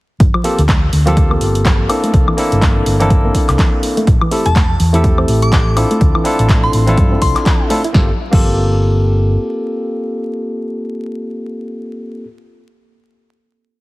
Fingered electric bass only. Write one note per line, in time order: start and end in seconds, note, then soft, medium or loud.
0.20 0.29 G1 loud
0.59 0.87 D2 loud
0.93 1.36 D2 loud
1.41 1.84 G1 medium
2.14 2.23 C2 loud
2.52 2.81 G1 loud
2.86 3.29 G1 loud
3.49 3.55 C2 medium
4.07 4.17 A1 loud
4.46 4.74 E1 loud
4.80 5.23 E2 loud
5.28 5.83 A1 medium
6.01 6.10 D2 loud
6.39 6.68 A1 loud
6.74 6.97 A1 loud
6.98 7.15 G2 medium
7.22 7.31 C2 medium
7.94 8.10 G1 loud
8.33 9.36 G1 medium